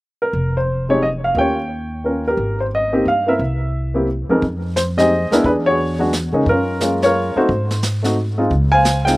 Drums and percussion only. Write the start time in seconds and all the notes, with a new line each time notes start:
4.42 brush sweep, kick
4.76 snare, hi-hat pedal
4.98 snare
5.32 snare
5.44 brush sweep, kick
6.13 snare, hi-hat pedal
6.46 brush sweep, kick
6.80 snare, hi-hat pedal
7.02 snare
7.49 brush sweep, kick
7.71 snare
7.83 snare, hi-hat pedal
8.04 snare
8.51 brush sweep, kick
8.85 snare, hi-hat pedal
9.07 snare